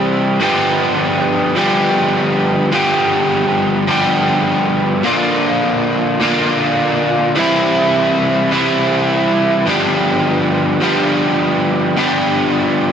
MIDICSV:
0, 0, Header, 1, 2, 480
1, 0, Start_track
1, 0, Tempo, 578592
1, 335, Time_signature, 4, 2, 24, 8
1, 10718, End_track
2, 0, Start_track
2, 0, Title_t, "Overdriven electric guitar"
2, 0, Program_c, 0, 29
2, 0, Note_on_c, 0, 48, 64
2, 0, Note_on_c, 0, 52, 69
2, 0, Note_on_c, 0, 55, 73
2, 0, Note_on_c, 0, 60, 76
2, 0, Note_on_c, 0, 67, 75
2, 318, Note_off_c, 0, 48, 0
2, 323, Note_off_c, 0, 52, 0
2, 328, Note_off_c, 0, 60, 0
2, 332, Note_on_c, 0, 43, 81
2, 337, Note_on_c, 0, 50, 86
2, 343, Note_off_c, 0, 55, 0
2, 343, Note_on_c, 0, 53, 86
2, 347, Note_on_c, 0, 55, 80
2, 353, Note_on_c, 0, 59, 99
2, 356, Note_off_c, 0, 67, 0
2, 360, Note_on_c, 0, 67, 91
2, 1286, Note_off_c, 0, 50, 0
2, 1287, Note_off_c, 0, 43, 0
2, 1290, Note_on_c, 0, 43, 66
2, 1300, Note_on_c, 0, 50, 83
2, 1301, Note_off_c, 0, 53, 0
2, 1304, Note_on_c, 0, 53, 74
2, 1309, Note_off_c, 0, 55, 0
2, 1311, Note_off_c, 0, 59, 0
2, 1312, Note_on_c, 0, 55, 68
2, 1315, Note_on_c, 0, 59, 77
2, 1316, Note_off_c, 0, 67, 0
2, 1320, Note_on_c, 0, 67, 80
2, 2243, Note_off_c, 0, 43, 0
2, 2248, Note_off_c, 0, 50, 0
2, 2253, Note_on_c, 0, 43, 83
2, 2254, Note_off_c, 0, 55, 0
2, 2255, Note_off_c, 0, 59, 0
2, 2257, Note_on_c, 0, 50, 81
2, 2258, Note_off_c, 0, 67, 0
2, 2262, Note_off_c, 0, 53, 0
2, 2265, Note_on_c, 0, 53, 82
2, 2270, Note_on_c, 0, 55, 79
2, 2274, Note_on_c, 0, 59, 85
2, 2279, Note_on_c, 0, 67, 96
2, 3205, Note_off_c, 0, 43, 0
2, 3207, Note_off_c, 0, 50, 0
2, 3214, Note_off_c, 0, 55, 0
2, 3214, Note_on_c, 0, 43, 76
2, 3215, Note_off_c, 0, 59, 0
2, 3218, Note_off_c, 0, 67, 0
2, 3218, Note_on_c, 0, 50, 75
2, 3222, Note_off_c, 0, 53, 0
2, 3225, Note_on_c, 0, 53, 74
2, 3231, Note_on_c, 0, 55, 67
2, 3239, Note_on_c, 0, 59, 78
2, 3242, Note_on_c, 0, 67, 88
2, 4166, Note_off_c, 0, 43, 0
2, 4168, Note_off_c, 0, 50, 0
2, 4171, Note_off_c, 0, 53, 0
2, 4174, Note_off_c, 0, 55, 0
2, 4175, Note_on_c, 0, 46, 90
2, 4178, Note_off_c, 0, 59, 0
2, 4180, Note_off_c, 0, 67, 0
2, 4183, Note_on_c, 0, 50, 90
2, 4193, Note_on_c, 0, 58, 99
2, 4199, Note_on_c, 0, 62, 92
2, 4203, Note_on_c, 0, 65, 100
2, 5126, Note_off_c, 0, 46, 0
2, 5130, Note_off_c, 0, 50, 0
2, 5135, Note_off_c, 0, 58, 0
2, 5140, Note_off_c, 0, 65, 0
2, 5141, Note_on_c, 0, 46, 65
2, 5150, Note_on_c, 0, 50, 78
2, 5160, Note_off_c, 0, 62, 0
2, 5160, Note_on_c, 0, 58, 72
2, 5164, Note_on_c, 0, 62, 87
2, 5171, Note_on_c, 0, 65, 85
2, 6089, Note_off_c, 0, 46, 0
2, 6093, Note_off_c, 0, 50, 0
2, 6098, Note_off_c, 0, 58, 0
2, 6103, Note_off_c, 0, 65, 0
2, 6103, Note_on_c, 0, 48, 82
2, 6111, Note_on_c, 0, 52, 89
2, 6119, Note_on_c, 0, 55, 86
2, 6121, Note_off_c, 0, 62, 0
2, 6125, Note_on_c, 0, 60, 81
2, 6131, Note_on_c, 0, 64, 102
2, 7048, Note_off_c, 0, 48, 0
2, 7052, Note_off_c, 0, 52, 0
2, 7057, Note_off_c, 0, 55, 0
2, 7059, Note_off_c, 0, 60, 0
2, 7061, Note_on_c, 0, 48, 69
2, 7063, Note_off_c, 0, 64, 0
2, 7070, Note_on_c, 0, 52, 68
2, 7077, Note_on_c, 0, 55, 75
2, 7083, Note_on_c, 0, 60, 73
2, 7090, Note_on_c, 0, 64, 82
2, 8006, Note_off_c, 0, 48, 0
2, 8010, Note_off_c, 0, 52, 0
2, 8014, Note_off_c, 0, 55, 0
2, 8016, Note_on_c, 0, 43, 85
2, 8017, Note_off_c, 0, 60, 0
2, 8020, Note_off_c, 0, 64, 0
2, 8025, Note_on_c, 0, 50, 82
2, 8032, Note_on_c, 0, 53, 98
2, 8037, Note_on_c, 0, 59, 88
2, 8039, Note_on_c, 0, 62, 93
2, 8046, Note_on_c, 0, 67, 94
2, 8962, Note_off_c, 0, 50, 0
2, 8964, Note_off_c, 0, 43, 0
2, 8967, Note_on_c, 0, 43, 72
2, 8972, Note_on_c, 0, 50, 80
2, 8975, Note_off_c, 0, 53, 0
2, 8979, Note_on_c, 0, 53, 76
2, 8984, Note_off_c, 0, 59, 0
2, 8986, Note_off_c, 0, 62, 0
2, 8987, Note_on_c, 0, 59, 80
2, 8989, Note_on_c, 0, 62, 89
2, 8990, Note_off_c, 0, 67, 0
2, 8994, Note_on_c, 0, 67, 86
2, 9914, Note_off_c, 0, 43, 0
2, 9917, Note_off_c, 0, 50, 0
2, 9924, Note_off_c, 0, 59, 0
2, 9928, Note_off_c, 0, 67, 0
2, 9928, Note_on_c, 0, 43, 89
2, 9933, Note_on_c, 0, 50, 94
2, 9935, Note_off_c, 0, 53, 0
2, 9938, Note_on_c, 0, 53, 87
2, 9945, Note_on_c, 0, 59, 97
2, 9949, Note_off_c, 0, 62, 0
2, 9952, Note_on_c, 0, 62, 90
2, 9955, Note_on_c, 0, 67, 98
2, 10718, Note_off_c, 0, 43, 0
2, 10718, Note_off_c, 0, 50, 0
2, 10718, Note_off_c, 0, 53, 0
2, 10718, Note_off_c, 0, 59, 0
2, 10718, Note_off_c, 0, 62, 0
2, 10718, Note_off_c, 0, 67, 0
2, 10718, End_track
0, 0, End_of_file